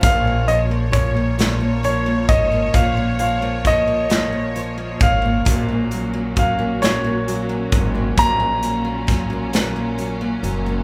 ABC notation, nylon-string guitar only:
X:1
M:6/8
L:1/16
Q:3/8=44
K:Bbm
V:1 name="Nylon-string guitar" clef=bass
B,, B, F, B, F, B, B,, B, F, B, F, B, | B,, B, F, B, F, B, B,, B, F, B, F, B, | B,, B, G, B, G, B, B,, B, G, B, G, B, | B,, B, G, B, G, B, B,, B, G, B, G, B, |]